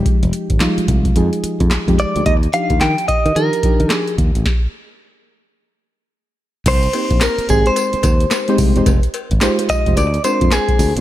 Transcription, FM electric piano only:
X:1
M:4/4
L:1/16
Q:"Swing 16ths" 1/4=109
K:Fdor
V:1 name="FM electric piano"
[F,A,EG]3 z [F,G,A,EF]3 z [F,A,EA]4 z [F,A,EG]2 [F,A,EG] | z2 [F,DEG]4- [F,DEG] z [F,DEG]2 [F,DEG]4- [F,DEG] z | z16 | z2 [B,CEGc]4 [A,CEGc]6 z [A,CEGc]2 [A,CEGc] |
z4 [A,EFGc] [A,EFGc]2 [A,EFGc] z2 [A,CDFBc]4 z [A,CD] |]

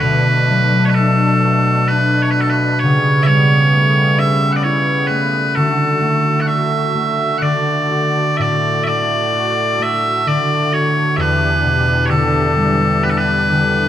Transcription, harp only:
X:1
M:3/4
L:1/8
Q:1/4=65
K:D
V:1 name="Harp"
B,, F, D F D F | C, G, A, C E A, | D, A, F A, D, F | A,, A, F A, D, F |
E,, B,, D, G, B, D, |]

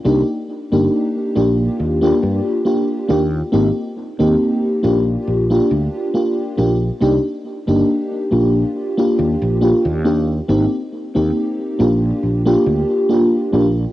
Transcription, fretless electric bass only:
X:1
M:4/4
L:1/16
Q:"Swing 16ths" 1/4=69
K:Gphr
V:1 name="Fretless electric bass" clef=bass
C,, z2 G,,, z2 B,,, z E,, z G,, z3 E,, z | A,,, z2 E,, z2 B,,, z B,,, z D,, z3 B,,, z | C,, z2 G,,, z2 B,,, z3 E,, B,,, z E,,3 | A,,, z2 E,, z2 B,,, z B,,, z D,, z3 B,,, z |]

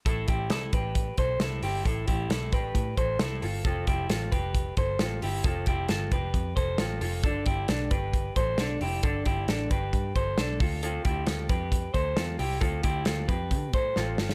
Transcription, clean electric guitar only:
X:1
M:4/4
L:1/8
Q:1/4=134
K:Am
V:1 name="Clean electric guitar"
[EA] [EG] [EA] [GB]2 [Ac] [EA] [EG] | [EA] [EG] [EA] [GB]2 [Ac] [EA] [FA] | [FA] [EG] [FA] [GB]2 [Ac] [FA] [EG] | [FA] [EG] [FA] [GB]2 [Ac] [FA] [FA] |
[DA] [EG] [DA] [GB]2 [Ac] [DA] [EG] | [DA] [EG] [DA] [GB]2 [Ac] [DA] [FA] | [FA] [EG] [FA] [GB]2 [Ac] [FA] [EG] | [FA] [EG] [FA] [GB]2 [Ac] [FA] [FA] |]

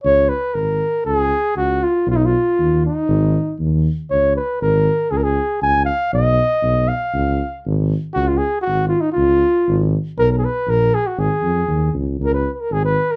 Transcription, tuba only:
X:1
M:2/4
L:1/8
Q:1/4=119
K:Dbmix
V:1 name="Tuba" clef=bass
D,,2 A,,,2 | D,,2 D,,2 | C,,2 E,,2 | A,,,2 E,,2 |
D,,2 A,,,2 | D,,2 D,,2 | C,,2 C,,2 | D,,2 A,,,2 |
D,,2 A,,,2 | D,,2 A,,,2 | C,,2 B,,,2 | A,,, F,, E,, D,, |
D,,2 A,,,2 |]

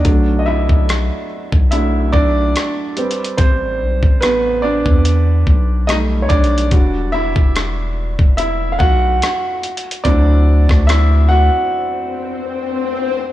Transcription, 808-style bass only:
X:1
M:4/4
L:1/16
Q:"Swing 16ths" 1/4=72
K:Bphr
V:1 name="808-style bass" clef=bass
B,,,3 B,,,2 z2 B,,,3 B,,,2 z4 | A,,,2 B,,, A,,,4 E,,3 B,,,4 B,,,2 | E,,,3 E,,,4 E,,,3 B,,,2 z4 | D,,3 D,,4 z8 z |]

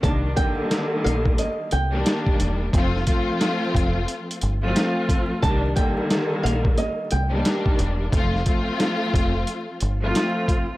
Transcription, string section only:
X:1
M:4/4
L:1/16
Q:"Swing 16ths" 1/4=89
K:Cdor
V:1 name="String section"
[E,G,B,D]2 [D,E,G,B,]8 z [E,G,B,D]4- [E,G,B,D] | [F,A,CF]2 [F,A,CF]8 z [F,A,CF]4- [F,A,CF] | [E,G,B,D]2 [D,E,G,B,]8 z [E,G,B,D]4- [E,G,B,D] | [F,A,CF]2 [F,A,CF]8 z [F,A,CF]4- [F,A,CF] |]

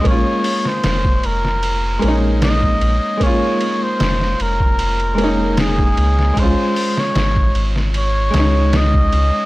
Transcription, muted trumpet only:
X:1
M:4/4
L:1/16
Q:1/4=76
K:Bbm
V:1 name="Muted trumpet"
d3 c3 B4- B z e4 | d3 c3 B6 A4 | c3 d4 z d4 e4 |]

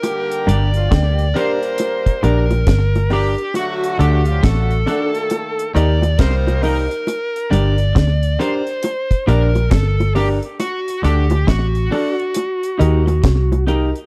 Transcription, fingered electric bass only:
X:1
M:4/4
L:1/16
Q:"Swing 16ths" 1/4=68
K:Gm
V:1 name="Fingered electric bass" clef=bass
z2 G,,,2 D,,2 z4 B,,,2 G,,,3 z | z2 D,,2 A,,,2 z4 E,,2 C,,3 z | z2 G,,,2 D,,2 z4 B,,,2 G,,,3 z | z2 D,,2 A,,,2 z4 E,,2 C,,3 z |]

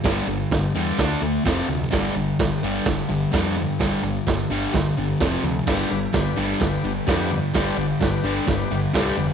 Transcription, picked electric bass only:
X:1
M:4/4
L:1/8
Q:1/4=128
K:Gmix
V:1 name="Picked electric bass" clef=bass
G,,, G,,, G,,, E,, D,, D,, F,,, D,, | G,,, G,,, G,,, G,,, G,,, G,,, F,,2 | G,,, G,,, G,,, G,,, G,,, G,,, F,,, D,, | G,,, G,,, G,,, G,,, G,,, G,,, F,,2 |
G,,, G,,, G,,, G,,, G,,, G,,, C,, F,,, |]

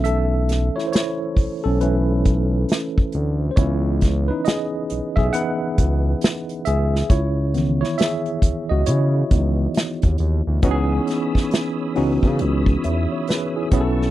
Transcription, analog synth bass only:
X:1
M:4/4
L:1/16
Q:"Swing 16ths" 1/4=68
K:C#m
V:1 name="Analog synth bass" clef=bass
B,,,4 z2 B,,, B,,,4- B,,, z2 =D,,2 | C,,4 z2 B,,, B,,, z2 C,,2 z2 C,,2 | C,,4 z2 C,, C,, C,2 C,,2 z D,, D,, =D,, | C,,2 z4 C,, C, C,,2 E,, z3 B,,,2 |]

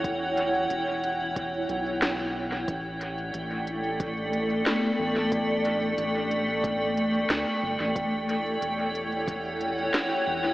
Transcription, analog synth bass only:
X:1
M:4/4
L:1/16
Q:1/4=91
K:Edor
V:1 name="Analog synth bass" clef=bass
E,,,4 E,,,6 B,,,6 | A,,,4 A,,,8 z2 A,,,2- | A,,,4 A,,,6 E,,,2 D,, z G,,, A,,, | E,,,4 E,,,8 z2 E,,,2 |]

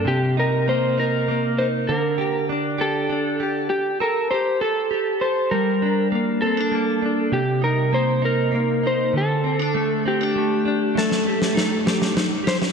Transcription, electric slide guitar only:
X:1
M:6/8
L:1/8
Q:3/8=66
K:Gm
V:1 name="Electric slide guitar"
G B c B2 c | B2 z A3 | G B c A2 c | B2 z A3 |
G B c B2 c | A3 G3 | A4 z c |]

